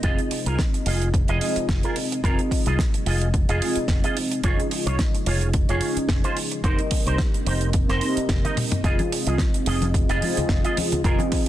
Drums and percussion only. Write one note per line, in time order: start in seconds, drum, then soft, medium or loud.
0.03 kick loud
0.03 closed hi-hat medium
0.19 closed hi-hat medium
0.31 open hi-hat medium
0.46 closed hi-hat medium
0.59 kick loud
0.59 snare loud
0.59 closed hi-hat medium
0.74 closed hi-hat medium
0.86 open hi-hat loud
1.02 closed hi-hat medium
1.14 kick loud
1.14 closed hi-hat medium
1.28 closed hi-hat soft
1.41 open hi-hat medium
1.56 closed hi-hat soft
1.69 kick loud
1.69 snare loud
1.69 closed hi-hat medium
1.83 closed hi-hat soft
1.96 open hi-hat medium
2.12 closed hi-hat medium
2.24 kick loud
2.24 closed hi-hat medium
2.39 closed hi-hat soft
2.51 kick medium
2.51 open hi-hat medium
2.66 closed hi-hat soft
2.79 kick loud
2.79 snare loud
2.79 closed hi-hat medium
2.94 closed hi-hat medium
3.06 open hi-hat medium
3.21 closed hi-hat medium
3.34 kick loud
3.34 closed hi-hat medium
3.49 closed hi-hat medium
3.62 open hi-hat loud
3.75 closed hi-hat medium
3.88 kick loud
3.88 snare loud
3.88 closed hi-hat medium
4.04 closed hi-hat medium
4.17 open hi-hat medium
4.31 closed hi-hat medium
4.44 kick loud
4.44 closed hi-hat medium
4.60 closed hi-hat medium
4.71 open hi-hat loud
4.87 closed hi-hat medium
4.99 kick loud
4.99 snare loud
4.99 closed hi-hat medium
5.15 closed hi-hat medium
5.26 open hi-hat medium
5.41 closed hi-hat soft
5.54 kick loud
5.54 closed hi-hat medium
5.69 closed hi-hat medium
5.81 open hi-hat medium
5.97 closed hi-hat medium
6.09 kick loud
6.09 snare loud
6.09 closed hi-hat medium
6.24 closed hi-hat medium
6.37 open hi-hat medium
6.52 closed hi-hat medium
6.64 kick loud
6.64 closed hi-hat medium
6.79 closed hi-hat medium
6.91 kick medium
6.91 open hi-hat loud
7.07 closed hi-hat soft
7.18 kick loud
7.18 snare loud
7.18 closed hi-hat medium
7.34 closed hi-hat medium
7.46 open hi-hat medium
7.61 closed hi-hat medium
7.73 kick loud
7.73 closed hi-hat medium
7.89 snare soft
7.89 closed hi-hat soft
8.01 open hi-hat loud
8.17 closed hi-hat medium
8.29 kick loud
8.29 snare loud
8.29 closed hi-hat medium
8.45 closed hi-hat medium
8.45 high tom soft
8.57 open hi-hat loud
8.57 mid tom medium
8.71 closed hi-hat soft
8.71 mid tom medium
8.84 kick loud
8.84 closed hi-hat medium
8.99 closed hi-hat medium
8.99 high conga medium
9.12 open hi-hat loud
9.27 closed hi-hat medium
9.38 kick loud
9.38 snare loud
9.38 closed hi-hat medium
9.38 high conga medium
9.54 closed hi-hat medium
9.66 open hi-hat medium
9.82 closed hi-hat medium
9.82 high conga medium
9.94 kick loud
9.94 closed hi-hat medium
10.09 closed hi-hat soft
10.22 open hi-hat medium
10.22 high conga medium
10.37 closed hi-hat medium
10.37 low conga medium
10.49 kick loud
10.49 snare loud
10.49 closed hi-hat medium
10.64 closed hi-hat medium
10.77 open hi-hat loud
10.77 high conga medium
10.92 closed hi-hat medium
10.92 low conga medium
11.04 kick loud
11.04 closed hi-hat medium
11.19 closed hi-hat soft
11.19 high conga loud
11.32 kick medium
11.32 open hi-hat loud